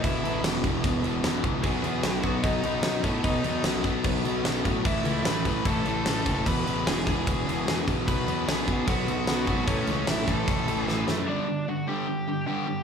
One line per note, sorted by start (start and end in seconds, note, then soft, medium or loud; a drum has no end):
0.03 0.21 E1 medium
0.03 0.22 E2 medium
0.03 0.22 B2 loud
0.03 0.23 E3 loud
0.03 0.41 E4 medium
0.03 0.40 E5 medium
0.03 kick loud
0.03 crash medium
0.23 0.41 A1 loud
0.23 0.42 E2 medium
0.23 0.43 B2 medium
0.23 0.43 E3 medium
0.23 crash medium
0.43 0.61 E1 loud
0.43 0.63 E2 medium
0.43 0.63 B2 loud
0.43 0.64 E3 loud
0.43 snare loud
0.43 crash medium
0.64 0.81 E1 medium
0.64 0.84 E2 medium
0.64 0.84 B2 loud
0.64 0.84 E3 loud
0.64 kick medium
0.64 crash medium
0.84 1.02 E1 medium
0.84 1.03 E2 medium
0.84 1.04 B2 loud
0.84 1.04 E3 medium
0.84 kick loud
0.84 crash medium
1.03 1.21 E1 medium
1.03 1.23 E2 loud
1.03 1.23 B2 loud
1.03 1.24 E3 loud
1.03 crash medium
1.23 1.41 E1 medium
1.23 1.42 E2 medium
1.23 1.43 B2 medium
1.23 1.44 E3 medium
1.23 snare loud
1.23 crash medium
1.43 1.61 C#2 loud
1.43 1.62 E2 medium
1.43 1.63 B2 medium
1.43 1.63 E3 medium
1.43 kick loud
1.43 crash medium
1.63 1.82 B1 medium
1.63 1.83 B2 medium
1.63 1.84 F#3 medium
1.63 1.84 B3 loud
1.63 2.01 G#4 medium
1.63 2.05 G#5 loud
1.63 kick loud
1.63 crash medium
1.83 2.01 E2 loud
1.83 2.04 B2 medium
1.83 2.05 F#3 loud
1.83 2.05 B3 medium
1.83 crash medium
2.03 2.21 B1 medium
2.03 2.23 B2 medium
2.03 2.23 F#3 loud
2.03 2.24 B3 loud
2.03 2.41 F#4 medium
2.03 2.46 F#5 loud
2.03 snare loud
2.03 crash medium
2.23 2.42 B1 medium
2.23 2.43 B2 medium
2.23 2.44 F#3 medium
2.23 2.44 B3 loud
2.23 kick medium
2.23 crash medium
2.42 2.62 B1 loud
2.42 2.62 B2 medium
2.42 2.63 F#3 medium
2.42 2.63 B3 medium
2.42 2.99 D#4 medium
2.42 3.03 D#5 medium
2.42 kick loud
2.42 crash medium
2.63 2.81 B1 loud
2.63 2.82 B2 medium
2.63 2.83 F#3 loud
2.63 2.83 B3 loud
2.63 crash medium
2.83 3.01 B1 medium
2.83 3.03 B2 medium
2.83 3.03 F#3 loud
2.83 3.04 B3 medium
2.83 snare loud
2.83 crash medium
3.03 3.22 A2 medium
3.03 3.24 B2 medium
3.03 3.25 F#3 medium
3.03 3.25 B3 loud
3.03 3.10 C#4 medium
3.03 3.09 C#5 medium
3.03 kick medium
3.03 crash medium
3.24 3.42 B1 medium
3.24 3.44 B2 medium
3.24 3.45 F#3 loud
3.24 3.46 B3 loud
3.24 3.62 D#4 medium
3.24 3.61 D#5 medium
3.24 kick loud
3.24 crash medium
3.44 3.62 E2 medium
3.44 3.63 B2 medium
3.44 3.64 F#3 medium
3.44 3.64 B3 medium
3.44 crash medium
3.64 3.82 B1 medium
3.64 3.83 B2 medium
3.64 3.83 F#3 loud
3.64 3.84 B3 loud
3.64 snare loud
3.64 crash medium
3.84 4.02 B1 medium
3.84 4.03 B2 medium
3.84 4.03 F#3 loud
3.84 4.03 B3 loud
3.84 kick medium
3.84 crash medium
4.04 4.23 B1 medium
4.04 4.23 B2 medium
4.04 4.24 F#3 medium
4.04 4.25 B3 loud
4.04 kick loud
4.04 crash medium
4.24 4.42 B1 loud
4.24 4.43 B2 medium
4.24 4.43 F#3 loud
4.24 4.44 B3 loud
4.24 crash medium
4.44 4.62 B1 medium
4.44 4.63 B2 medium
4.44 4.64 F#3 medium
4.44 4.65 B3 loud
4.44 snare loud
4.44 crash medium
4.64 4.83 A2 medium
4.64 4.84 B2 medium
4.64 4.84 F#3 medium
4.64 4.84 B3 medium
4.64 kick medium
4.64 crash medium
4.84 5.03 A1 medium
4.84 5.05 A2 medium
4.84 5.06 E3 medium
4.84 5.06 A3 medium
4.84 5.23 E4 medium
4.84 5.27 E5 medium
4.84 kick loud
4.84 crash medium
5.05 5.23 C#2 loud
5.05 5.24 A2 medium
5.05 5.25 E3 medium
5.05 5.25 A3 medium
5.05 crash medium
5.24 5.43 A1 medium
5.24 5.46 A2 medium
5.24 5.47 E3 loud
5.24 5.47 A3 loud
5.24 5.63 B4 medium
5.24 5.67 B5 loud
5.24 snare loud
5.24 crash medium
5.45 5.63 A1 medium
5.45 5.66 A2 medium
5.45 5.66 E3 loud
5.45 5.67 A3 medium
5.45 kick medium
5.45 crash medium
5.65 5.83 A1 medium
5.65 5.86 A2 medium
5.65 5.86 E3 medium
5.65 5.86 A3 medium
5.65 6.03 A4 medium
5.65 6.06 A5 loud
5.65 kick loud
5.65 crash medium
5.85 6.03 A1 medium
5.85 6.05 A2 medium
5.85 6.06 E3 loud
5.85 6.07 A3 loud
5.85 crash medium
6.05 6.24 A1 medium
6.05 6.25 A2 medium
6.05 6.26 E3 medium
6.05 6.26 A3 medium
6.05 6.44 A4 medium
6.05 6.47 A5 loud
6.05 snare loud
6.05 crash medium
6.26 6.44 F#1 medium
6.26 6.45 A2 medium
6.26 6.46 E3 medium
6.26 6.46 A3 medium
6.26 kick medium
6.26 crash medium
6.46 6.64 E1 medium
6.46 6.65 E2 medium
6.46 6.66 B2 medium
6.46 6.66 E3 loud
6.46 6.84 B4 medium
6.46 6.87 B5 medium
6.46 kick loud
6.46 crash loud
6.66 6.84 A1 loud
6.66 6.85 E2 medium
6.66 6.85 B2 medium
6.66 6.86 E3 medium
6.66 crash medium
6.86 7.04 E1 loud
6.86 7.05 E2 medium
6.86 7.06 B2 loud
6.86 7.06 E3 loud
6.86 7.06 G#4 medium
6.86 7.07 G#5 medium
6.86 snare loud
6.86 crash loud
7.06 7.24 E1 medium
7.06 7.25 E2 medium
7.06 7.26 B2 medium
7.06 7.27 E3 medium
7.06 7.84 G#4 medium
7.06 7.84 G#5 medium
7.06 kick loud
7.06 crash medium
7.26 7.45 E1 loud
7.26 7.45 E2 medium
7.26 7.46 B2 medium
7.26 7.46 E3 medium
7.26 kick loud
7.26 crash medium
7.47 7.64 E1 loud
7.47 7.66 E2 medium
7.47 7.66 B2 loud
7.47 7.67 E3 loud
7.47 crash medium
7.67 7.85 E1 medium
7.67 7.86 E2 medium
7.67 7.86 B2 medium
7.67 7.87 E3 medium
7.67 snare loud
7.67 crash medium
7.87 8.05 A1 medium
7.87 8.06 E2 medium
7.87 8.06 B2 medium
7.87 8.06 E3 medium
7.87 kick loud
7.87 crash medium
8.07 8.25 B1 medium
8.07 8.25 B2 medium
8.07 8.26 F#3 medium
8.07 8.27 B3 medium
8.07 8.45 B4 medium
8.07 8.49 B5 medium
8.07 kick loud
8.07 crash medium
8.27 8.45 E2 loud
8.27 8.44 B2 medium
8.27 8.45 F#3 medium
8.27 8.46 B3 loud
8.27 crash medium
8.46 8.65 B1 medium
8.46 8.65 B2 medium
8.46 8.66 F#3 medium
8.46 8.66 B3 loud
8.46 8.85 G#4 medium
8.46 8.89 G#5 medium
8.46 snare loud
8.46 crash medium
8.67 8.85 B1 loud
8.67 8.86 B2 medium
8.67 8.87 F#3 medium
8.67 8.88 B3 medium
8.67 kick loud
8.67 crash medium
8.87 9.05 B1 loud
8.87 9.06 B2 medium
8.87 9.07 F#3 medium
8.87 9.07 B3 medium
8.87 9.25 F#4 medium
8.87 9.26 F#5 loud
8.87 kick loud
8.87 crash medium
9.07 9.25 B1 medium
9.07 9.26 B2 medium
9.07 9.27 F#3 loud
9.07 9.28 B3 loud
9.07 crash medium
9.27 9.45 B1 medium
9.27 9.47 B2 medium
9.27 9.47 F#3 medium
9.27 9.47 B3 medium
9.27 9.65 F#4 medium
9.27 9.69 F#5 loud
9.27 snare loud
9.27 crash medium
9.47 9.65 G#1 loud
9.47 9.66 B2 medium
9.47 9.67 F#3 medium
9.47 9.67 B3 medium
9.47 kick medium
9.47 crash medium
9.67 9.85 A1 loud
9.67 9.87 A2 medium
9.67 9.87 E3 medium
9.67 9.87 A3 loud
9.67 10.05 C#4 medium
9.67 10.08 C#5 medium
9.67 kick loud
9.67 crash medium
9.87 10.05 C#2 loud
9.87 10.07 A2 medium
9.87 10.07 E3 loud
9.87 10.08 A3 medium
9.87 crash medium
10.07 10.25 A1 medium
10.07 10.27 A2 loud
10.07 10.28 E3 medium
10.07 10.28 A3 loud
10.07 10.26 E4 medium
10.07 10.28 E5 medium
10.07 snare loud
10.07 crash medium
10.28 10.45 A1 medium
10.28 10.46 A2 medium
10.28 10.47 E3 loud
10.28 10.47 A3 medium
10.28 11.04 A4 medium
10.28 10.80 A5 medium
10.28 kick medium
10.28 crash medium
10.48 10.65 A1 loud
10.48 10.66 A2 medium
10.48 10.66 E3 medium
10.48 10.66 A3 medium
10.48 kick loud
10.48 crash medium
10.67 10.85 A1 loud
10.67 10.86 A2 loud
10.67 10.86 E3 loud
10.67 10.87 A3 loud
10.67 crash medium
10.80 11.04 G#5 medium
10.87 11.05 A1 medium
10.87 11.06 A2 medium
10.87 11.06 E3 medium
10.87 11.06 A3 medium
10.87 snare medium
11.07 11.25 F#2 medium
11.07 11.26 A2 medium
11.07 11.26 E3 medium
11.07 11.26 A3 loud
11.07 snare medium
11.27 11.46 G2 medium
11.27 11.46 D3 medium
11.27 11.47 G3 loud
11.27 11.65 D4 medium
11.27 11.70 D5 medium
11.47 11.65 G2 medium
11.47 11.65 D3 medium
11.68 11.86 G2 medium
11.68 11.86 D3 medium
11.68 11.87 F#4 medium
11.68 11.88 F#5 medium
11.87 12.06 G2 medium
11.87 12.06 D3 loud
11.87 12.07 G3 medium
11.87 12.44 G4 medium
11.87 12.46 G5 medium
12.08 12.26 G2 medium
12.08 12.26 D3 medium
12.28 12.45 G2 medium
12.28 12.46 D3 medium
12.46 12.66 G2 medium
12.46 12.66 D3 medium
12.46 12.66 G3 medium
12.46 12.83 G4 medium
12.46 12.83 G5 medium
12.67 12.83 G2 medium
12.67 12.83 D3 medium